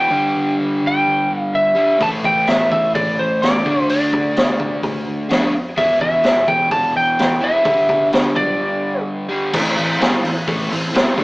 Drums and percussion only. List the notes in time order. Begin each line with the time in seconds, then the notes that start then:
2.01 kick, open hi-hat
2.24 kick
2.47 snare, open hi-hat
2.72 kick
2.95 kick, open hi-hat
3.43 snare, open hi-hat
3.66 kick
3.89 open hi-hat
4.13 kick
4.36 snare, open hi-hat
4.60 kick
4.83 kick, open hi-hat
5.30 snare, open hi-hat
5.78 kick, open hi-hat
6.01 kick
6.24 snare, open hi-hat
6.48 kick
6.71 kick, open hi-hat
7.19 snare, open hi-hat
7.65 kick, open hi-hat
7.89 kick
8.12 snare, open hi-hat
8.36 kick
9.53 kick, crash
9.78 open hi-hat
10.01 snare, open hi-hat
10.25 open hi-hat
10.48 kick, open hi-hat
10.72 open hi-hat
10.95 snare, open hi-hat
11.18 kick, open hi-hat